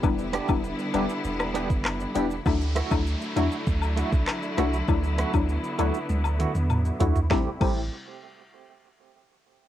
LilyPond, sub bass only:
\new Staff \with { instrumentName = "Sub bass" } { \clef bass \time 4/4 \key d \mixolydian \tempo 4 = 99 e,,8. e,,8 r16 e,,16 r16 e,,8. fis,,8. e,,8 | d,8. d,8 r16 e,16 r16 d,8. c,16 r8 c,8 | d,8. d,8 r16 d,16 r16 d,8. e,8. d,8 | a,,16 r16 a,,8 r2. | }